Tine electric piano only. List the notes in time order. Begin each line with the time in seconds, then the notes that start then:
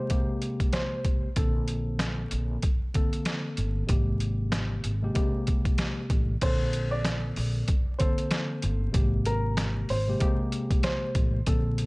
0.09 C3 G#3 A#3 G4
1.36 D3 A#3 C4 A4
2.94 D3 A#3 C4 A4
3.87 C3 G#3 A#3 G4
5.02 C3 G#3 A#3 G4
5.14 C3 G#3 A#3 G4
6.41 D3 A#3 C4 A4
7.99 D3 A#3 C4 A4
8.92 C3 G#3 A#3 G4
10.07 C3 G#3 A#3 G4
10.19 C3 G#3 A#3 G4
11.47 D3 A#3 C4 A4